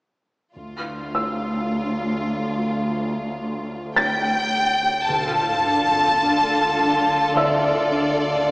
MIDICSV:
0, 0, Header, 1, 9, 480
1, 0, Start_track
1, 0, Key_signature, -1, "minor"
1, 0, Tempo, 1132075
1, 239, Time_signature, 4, 2, 24, 8
1, 3609, End_track
2, 0, Start_track
2, 0, Title_t, "Felt piano"
2, 0, Program_c, 0, 0
2, 318, Control_c, 0, 64, 127
2, 486, Note_on_c, 0, 88, 23
2, 1681, Note_on_c, 0, 93, 39
2, 1906, Note_off_c, 0, 88, 0
2, 2143, Note_off_c, 0, 93, 0
2, 2166, Control_c, 0, 64, 0
2, 2226, Control_c, 0, 64, 127
2, 3123, Note_on_c, 0, 76, 22
2, 3124, Note_on_c, 0, 88, 24
2, 3609, Note_off_c, 0, 76, 0
2, 3609, Note_off_c, 0, 88, 0
2, 3609, End_track
3, 0, Start_track
3, 0, Title_t, "Violin section"
3, 0, Program_c, 1, 48
3, 242, Note_on_c, 1, 65, 27
3, 1664, Note_off_c, 1, 65, 0
3, 1682, Note_on_c, 1, 79, 69
3, 2144, Note_off_c, 1, 79, 0
3, 2158, Note_on_c, 1, 81, 46
3, 3119, Note_off_c, 1, 81, 0
3, 3121, Note_on_c, 1, 74, 47
3, 3609, Note_off_c, 1, 74, 0
3, 3609, End_track
4, 0, Start_track
4, 0, Title_t, "Violin section"
4, 0, Program_c, 2, 48
4, 2161, Note_on_c, 2, 65, 29
4, 2161, Note_on_c, 2, 69, 31
4, 3609, Note_off_c, 2, 65, 0
4, 3609, Note_off_c, 2, 69, 0
4, 3609, End_track
5, 0, Start_track
5, 0, Title_t, "Marimba"
5, 0, Program_c, 3, 12
5, 2159, Note_on_c, 3, 50, 35
5, 2303, Note_off_c, 3, 50, 0
5, 2398, Note_on_c, 3, 62, 23
5, 2543, Note_off_c, 3, 62, 0
5, 2639, Note_on_c, 3, 62, 24
5, 2783, Note_off_c, 3, 62, 0
5, 2876, Note_on_c, 3, 62, 25
5, 3021, Note_off_c, 3, 62, 0
5, 3116, Note_on_c, 3, 50, 40
5, 3261, Note_off_c, 3, 50, 0
5, 3357, Note_on_c, 3, 62, 28
5, 3502, Note_off_c, 3, 62, 0
5, 3609, End_track
6, 0, Start_track
6, 0, Title_t, "Cello section"
6, 0, Program_c, 4, 48
6, 241, Note_on_c, 4, 38, 30
6, 2058, Note_off_c, 4, 38, 0
6, 2159, Note_on_c, 4, 50, 32
6, 3609, Note_off_c, 4, 50, 0
6, 3609, End_track
7, 0, Start_track
7, 0, Title_t, "Double bass section"
7, 0, Program_c, 5, 48
7, 236, Note_on_c, 5, 38, 28
7, 2056, Note_off_c, 5, 38, 0
7, 2159, Note_on_c, 5, 38, 28
7, 2622, Note_off_c, 5, 38, 0
7, 3609, End_track
8, 0, Start_track
8, 0, Title_t, "Sub bass"
8, 0, Program_c, 6, 38
8, 240, Note_on_c, 6, 38, 50
8, 2143, Note_off_c, 6, 38, 0
8, 2163, Note_on_c, 6, 38, 55
8, 3609, Note_off_c, 6, 38, 0
8, 3609, End_track
9, 0, Start_track
9, 0, Title_t, "Sub drop"
9, 0, Program_c, 7, 103
9, 2157, Note_on_c, 7, 60, 28
9, 3609, Note_off_c, 7, 60, 0
9, 3609, End_track
0, 0, End_of_file